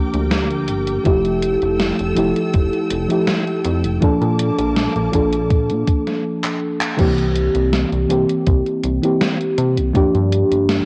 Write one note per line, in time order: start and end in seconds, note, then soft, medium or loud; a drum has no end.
0.00 1.04 F3 medium
0.00 1.08 A#3 medium
0.00 1.08 D4 medium
0.00 1.07 G4 loud
0.00 1.02 A#4 medium
0.00 3.98 G5 medium
0.00 1.03 D6 medium
0.14 0.70 D2 medium
0.14 closed hi-hat soft
0.31 snare loud
0.31 closed hi-hat soft
0.51 closed hi-hat soft
0.68 0.99 G1 medium
0.68 closed hi-hat medium
0.87 closed hi-hat soft
1.04 1.56 F1 loud
1.04 2.12 F3 medium
1.04 2.13 A3 medium
1.04 2.13 E4 medium
1.04 2.13 G4 loud
1.04 4.00 A4 medium
1.04 4.00 E6 loud
1.04 kick loud
1.04 closed hi-hat soft
1.25 closed hi-hat soft
1.42 closed hi-hat medium
1.62 1.92 F1 loud
1.62 closed hi-hat soft
1.80 snare loud
1.80 closed hi-hat medium
1.99 2.14 F1 medium
1.99 closed hi-hat soft
2.15 2.33 F1 medium
2.15 3.05 F3 medium
2.15 3.06 A3 medium
2.15 3.06 E4 medium
2.15 3.07 G4 medium
2.15 closed hi-hat medium
2.36 closed hi-hat soft
2.54 2.70 F1 loud
2.54 kick loud
2.54 closed hi-hat soft
2.73 closed hi-hat soft
2.91 3.07 F1 medium
2.91 closed hi-hat medium
3.09 3.97 F3 medium
3.09 3.98 A3 medium
3.09 3.98 E4 medium
3.09 3.99 G4 medium
3.09 closed hi-hat soft
3.27 snare loud
3.27 closed hi-hat medium
3.47 closed hi-hat soft
3.65 3.86 F2 loud
3.65 closed hi-hat medium
3.84 3.99 F1 medium
3.84 closed hi-hat soft
4.00 4.18 A#2 soft
4.00 5.08 F3 loud
4.00 5.09 A#3 medium
4.00 6.22 A#3 medium
4.00 5.09 D4 medium
4.00 5.10 A4 loud
4.00 6.22 A5 medium
4.00 6.22 D6 medium
4.00 kick loud
4.00 closed hi-hat soft
4.21 4.51 A#2 loud
4.21 closed hi-hat soft
4.39 closed hi-hat medium
4.58 4.88 A#1 loud
4.58 closed hi-hat medium
4.76 snare loud
4.76 closed hi-hat soft
4.96 5.10 A#1 medium
4.96 closed hi-hat soft
5.12 5.71 A#1 medium
5.12 6.24 F3 medium
5.12 6.24 A#3 medium
5.12 6.25 D4 medium
5.12 6.25 A4 loud
5.12 kick medium
5.12 closed hi-hat medium
5.33 closed hi-hat soft
5.50 kick loud
5.50 closed hi-hat medium
5.70 5.84 A#2 loud
5.70 closed hi-hat soft
5.87 kick loud
5.87 closed hi-hat medium
6.07 snare soft
6.07 closed hi-hat soft
6.44 clap medium
6.81 clap loud
6.97 7.49 C2 loud
6.97 8.05 E3 medium
6.97 8.05 A#3 medium
6.97 8.06 C4 medium
6.97 8.06 G4 loud
6.97 kick loud
6.97 closed hi-hat medium
6.97 crash medium
7.18 closed hi-hat soft
7.35 closed hi-hat loud
7.55 7.85 C2 loud
7.55 closed hi-hat medium
7.73 snare loud
7.73 closed hi-hat medium
7.92 8.06 C2 medium
7.92 closed hi-hat soft
8.08 8.25 C2 medium
8.08 8.98 E3 medium
8.08 8.98 A#3 medium
8.08 8.99 C4 medium
8.08 8.99 G4 loud
8.08 closed hi-hat loud
8.29 closed hi-hat medium
8.47 8.62 C2 loud
8.47 kick loud
8.47 closed hi-hat medium
8.66 closed hi-hat soft
8.84 9.00 C2 medium
8.84 closed hi-hat medium
9.02 9.90 E3 medium
9.02 9.91 A#3 medium
9.02 9.91 C4 medium
9.02 9.92 G4 medium
9.02 closed hi-hat medium
9.21 snare loud
9.21 closed hi-hat medium
9.41 closed hi-hat soft
9.58 9.79 C3 loud
9.58 closed hi-hat medium
9.77 9.92 C2 medium
9.77 closed hi-hat medium
9.93 10.11 G2 soft
9.93 10.85 F3 medium
9.93 10.85 A#3 medium
9.93 10.85 D4 medium
9.93 10.85 G4 loud
9.93 kick loud
9.93 closed hi-hat soft
10.15 10.44 G2 loud
10.15 closed hi-hat soft
10.32 closed hi-hat loud
10.51 10.81 G1 loud
10.51 closed hi-hat medium
10.69 snare loud
10.69 closed hi-hat medium